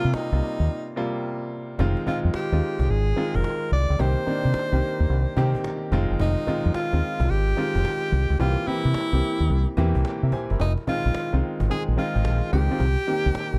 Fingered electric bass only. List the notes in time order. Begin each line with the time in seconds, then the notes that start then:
0.05 C3
0.14 muted fingered electric bass stroke
0.32 C2
0.60 D#2
1.79 F1
2.07 muted fingered electric bass stroke
2.25 F2
2.34 muted fingered electric bass stroke
2.52 D#2
2.79 C2
2.89 G#1
3.35 F1
3.72 C2
3.90 C#2
3.99 C2
4.27 muted fingered electric bass stroke
4.45 C3
4.54 muted fingered electric bass stroke
4.72 C2
5.00 D#2
5.10 C2
5.37 C3
5.92 F1
6.10 F#1
6.20 F1
6.47 muted fingered electric bass stroke
6.65 F2
6.75 muted fingered electric bass stroke
6.93 D#2
7.20 C2
7.30 G#1
7.75 F1
8.12 C2
8.30 C#2
8.40 C2
8.67 muted fingered electric bass stroke
8.85 C3
8.95 muted fingered electric bass stroke
9.13 C2
9.40 D#2
9.50 C2
9.77 E2
9.95 C2
10.23 C3
10.51 F#1
10.60 F1
11.05 A#1
11.15 muted fingered electric bass stroke
11.33 C2
11.60 G#1
11.70 muted fingered electric bass stroke
11.88 A#1
12.15 G#1
12.25 A#1
12.53 C#2
12.80 C2
13.26 C2
13.53 A#1